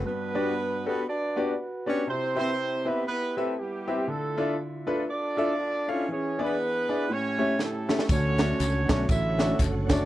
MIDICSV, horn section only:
0, 0, Header, 1, 2, 480
1, 0, Start_track
1, 0, Tempo, 502092
1, 54, Time_signature, 4, 2, 24, 8
1, 9610, End_track
2, 0, Start_track
2, 0, Title_t, "Horn section"
2, 0, Program_c, 0, 61
2, 59, Note_on_c, 0, 59, 109
2, 59, Note_on_c, 0, 66, 80
2, 59, Note_on_c, 0, 71, 118
2, 63, Note_on_c, 0, 62, 81
2, 826, Note_off_c, 0, 59, 0
2, 826, Note_off_c, 0, 71, 0
2, 838, Note_on_c, 0, 59, 95
2, 838, Note_on_c, 0, 71, 103
2, 984, Note_off_c, 0, 66, 0
2, 986, Note_off_c, 0, 62, 0
2, 1012, Note_off_c, 0, 59, 0
2, 1012, Note_off_c, 0, 71, 0
2, 1028, Note_on_c, 0, 71, 88
2, 1029, Note_on_c, 0, 66, 85
2, 1032, Note_on_c, 0, 62, 95
2, 1032, Note_on_c, 0, 74, 103
2, 1474, Note_off_c, 0, 62, 0
2, 1474, Note_off_c, 0, 74, 0
2, 1801, Note_on_c, 0, 61, 108
2, 1801, Note_on_c, 0, 73, 117
2, 1948, Note_off_c, 0, 71, 0
2, 1949, Note_off_c, 0, 66, 0
2, 1975, Note_off_c, 0, 61, 0
2, 1975, Note_off_c, 0, 73, 0
2, 1990, Note_on_c, 0, 64, 90
2, 1996, Note_on_c, 0, 67, 90
2, 1997, Note_on_c, 0, 60, 98
2, 1997, Note_on_c, 0, 72, 106
2, 2263, Note_off_c, 0, 64, 0
2, 2266, Note_off_c, 0, 67, 0
2, 2271, Note_off_c, 0, 60, 0
2, 2271, Note_off_c, 0, 72, 0
2, 2274, Note_on_c, 0, 64, 94
2, 2277, Note_on_c, 0, 67, 86
2, 2282, Note_on_c, 0, 60, 107
2, 2282, Note_on_c, 0, 72, 117
2, 2723, Note_off_c, 0, 60, 0
2, 2723, Note_off_c, 0, 72, 0
2, 2749, Note_on_c, 0, 59, 98
2, 2749, Note_on_c, 0, 71, 107
2, 2927, Note_off_c, 0, 59, 0
2, 2927, Note_off_c, 0, 71, 0
2, 2929, Note_off_c, 0, 64, 0
2, 2934, Note_off_c, 0, 67, 0
2, 2938, Note_on_c, 0, 59, 112
2, 2938, Note_on_c, 0, 71, 122
2, 2940, Note_on_c, 0, 64, 88
2, 2946, Note_on_c, 0, 67, 80
2, 3208, Note_off_c, 0, 59, 0
2, 3208, Note_off_c, 0, 71, 0
2, 3233, Note_on_c, 0, 57, 81
2, 3233, Note_on_c, 0, 69, 88
2, 3411, Note_off_c, 0, 57, 0
2, 3411, Note_off_c, 0, 69, 0
2, 3420, Note_off_c, 0, 64, 0
2, 3420, Note_off_c, 0, 67, 0
2, 3432, Note_on_c, 0, 55, 75
2, 3432, Note_on_c, 0, 64, 63
2, 3432, Note_on_c, 0, 67, 81
2, 3434, Note_on_c, 0, 59, 65
2, 3874, Note_off_c, 0, 64, 0
2, 3875, Note_off_c, 0, 59, 0
2, 3905, Note_on_c, 0, 64, 72
2, 3907, Note_off_c, 0, 55, 0
2, 3907, Note_off_c, 0, 67, 0
2, 3907, Note_on_c, 0, 65, 68
2, 3910, Note_on_c, 0, 57, 83
2, 3910, Note_on_c, 0, 69, 91
2, 4386, Note_off_c, 0, 57, 0
2, 4386, Note_off_c, 0, 69, 0
2, 4685, Note_on_c, 0, 57, 75
2, 4685, Note_on_c, 0, 69, 81
2, 4824, Note_off_c, 0, 64, 0
2, 4826, Note_off_c, 0, 65, 0
2, 4852, Note_off_c, 0, 57, 0
2, 4852, Note_off_c, 0, 69, 0
2, 4860, Note_on_c, 0, 65, 88
2, 4864, Note_on_c, 0, 69, 86
2, 4870, Note_on_c, 0, 62, 104
2, 4870, Note_on_c, 0, 74, 113
2, 5632, Note_off_c, 0, 62, 0
2, 5632, Note_off_c, 0, 74, 0
2, 5644, Note_on_c, 0, 61, 100
2, 5644, Note_on_c, 0, 73, 108
2, 5781, Note_off_c, 0, 65, 0
2, 5783, Note_off_c, 0, 69, 0
2, 5828, Note_off_c, 0, 61, 0
2, 5828, Note_off_c, 0, 73, 0
2, 5833, Note_on_c, 0, 68, 70
2, 5854, Note_on_c, 0, 61, 96
2, 5854, Note_on_c, 0, 73, 105
2, 6105, Note_off_c, 0, 61, 0
2, 6105, Note_off_c, 0, 73, 0
2, 6122, Note_off_c, 0, 68, 0
2, 6133, Note_on_c, 0, 68, 83
2, 6134, Note_on_c, 0, 62, 82
2, 6147, Note_on_c, 0, 59, 110
2, 6147, Note_on_c, 0, 71, 119
2, 6753, Note_off_c, 0, 62, 0
2, 6753, Note_off_c, 0, 68, 0
2, 6792, Note_on_c, 0, 64, 84
2, 6796, Note_on_c, 0, 67, 83
2, 6798, Note_off_c, 0, 59, 0
2, 6798, Note_off_c, 0, 71, 0
2, 6811, Note_on_c, 0, 61, 104
2, 6811, Note_on_c, 0, 73, 113
2, 7272, Note_off_c, 0, 64, 0
2, 7273, Note_off_c, 0, 61, 0
2, 7273, Note_off_c, 0, 73, 0
2, 7281, Note_on_c, 0, 61, 69
2, 7283, Note_on_c, 0, 64, 69
2, 7299, Note_on_c, 0, 57, 88
2, 7299, Note_on_c, 0, 69, 96
2, 7706, Note_off_c, 0, 67, 0
2, 7715, Note_off_c, 0, 61, 0
2, 7716, Note_off_c, 0, 64, 0
2, 7729, Note_off_c, 0, 57, 0
2, 7729, Note_off_c, 0, 69, 0
2, 7740, Note_on_c, 0, 69, 93
2, 7741, Note_on_c, 0, 66, 82
2, 7762, Note_on_c, 0, 61, 108
2, 7762, Note_on_c, 0, 73, 117
2, 8476, Note_off_c, 0, 61, 0
2, 8476, Note_off_c, 0, 73, 0
2, 8523, Note_on_c, 0, 61, 97
2, 8523, Note_on_c, 0, 73, 106
2, 8658, Note_off_c, 0, 66, 0
2, 8658, Note_off_c, 0, 69, 0
2, 8683, Note_off_c, 0, 61, 0
2, 8683, Note_off_c, 0, 73, 0
2, 8695, Note_on_c, 0, 73, 97
2, 8697, Note_on_c, 0, 69, 94
2, 8703, Note_on_c, 0, 64, 106
2, 8703, Note_on_c, 0, 76, 115
2, 9177, Note_off_c, 0, 64, 0
2, 9177, Note_off_c, 0, 76, 0
2, 9460, Note_on_c, 0, 62, 105
2, 9460, Note_on_c, 0, 74, 114
2, 9610, Note_off_c, 0, 62, 0
2, 9610, Note_off_c, 0, 69, 0
2, 9610, Note_off_c, 0, 73, 0
2, 9610, Note_off_c, 0, 74, 0
2, 9610, End_track
0, 0, End_of_file